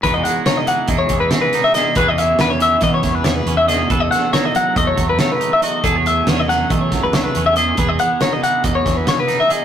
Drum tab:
HH |xxxxxxxxx|xxxxxxxxx|xxxxxxxxx|xxxxxxxxx|
SD |--o---ooo|--o-ooo-o|-oo---o--|--oo-oo--|
BD |o---oo---|o---oo---|o---oo---|o---oo---|

HH |xxxxxxxxx|
SD |--o--ooo-|
BD |o---oo---|